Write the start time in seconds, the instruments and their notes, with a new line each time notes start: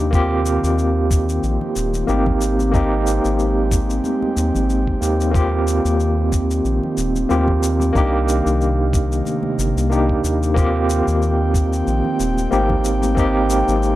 Already playing: analog synth bass D#2, analog synth pad C3 D#3 A#3, tine electric piano A#3 D4 D#4 G4
0.10 analog synth pad D#3 C4 G4, tine electric piano A#3 C4 F4, kick, shaker
0.15 tine electric piano G4
0.46 shaker
0.64 analog synth bass D#2, shaker
0.78 shaker
1.11 kick, shaker
1.29 shaker
1.43 analog synth bass A#1, shaker
1.61 low conga
1.76 analog synth bass D#1, shaker
1.94 high conga, shaker
2.07 analog synth bass G#1, tine electric piano A#3 C4 D#4 G4, high conga, shaker
2.26 kick, low conga
2.41 analog synth pad G#3, shaker
2.59 high conga, shaker
2.71 tine electric piano A#3 C4 D#4, kick, shaker
2.76 tine electric piano G4
3.07 shaker
3.25 analog synth bass G#1, shaker
3.39 shaker
3.71 kick, shaker
3.90 shaker
4.04 high conga, shaker
4.22 high conga
4.37 analog synth bass D#2, shaker
4.55 analog synth bass G#1, low conga, shaker
4.70 shaker
4.87 kick
5.01 analog synth bass D#2, tine electric piano A#3 C4 D#4 G4, shaker
5.20 shaker
5.31 analog synth pad D#3, tine electric piano A#3 C4 F4, kick, shaker
5.36 tine electric piano G4
5.67 shaker
5.85 analog synth bass D#2, shaker
6.00 shaker
6.32 kick, shaker
6.51 shaker
6.65 analog synth bass A#1, shaker
6.83 low conga
6.97 analog synth bass D#1, shaker
7.16 high conga, shaker
7.29 analog synth bass D#2, tine electric piano A#3 C4 F4 G4, high conga, shaker
7.48 kick, low conga
7.63 shaker
7.80 high conga, shaker
7.93 analog synth bass C2, analog synth pad C3 D#3 A#3, tine electric piano A#3 D4 D#4, kick, shaker
7.97 tine electric piano G4
8.28 shaker
8.46 analog synth bass C2, shaker
8.61 shaker
8.93 kick, shaker
9.12 shaker
9.25 high conga, shaker
9.43 high conga
9.58 analog synth bass G1, shaker
9.77 analog synth bass C2, shaker
9.90 tine electric piano A#3 D4 D#4 G4, shaker
10.09 kick
10.24 analog synth bass D#2, shaker
10.43 shaker
10.54 analog synth pad D#3 C4 G5, tine electric piano A#3 C4 F4, kick, shaker
10.59 tine electric piano G4
10.90 shaker
11.07 analog synth bass D#2, shaker
11.22 shaker
11.54 kick, shaker
11.73 shaker
11.87 analog synth bass A#1, shaker
12.04 low conga
12.20 analog synth bass D#1, shaker
12.37 high conga, shaker
12.51 analog synth bass G#1, tine electric piano A#3 C4 D#4 G4, high conga, shaker
12.69 kick, low conga
12.84 analog synth pad G#3, shaker
13.02 high conga, shaker
13.15 tine electric piano A#3 C4 D#4, kick, shaker
13.19 tine electric piano G4
13.50 shaker
13.68 analog synth bass G#1, shaker
13.83 shaker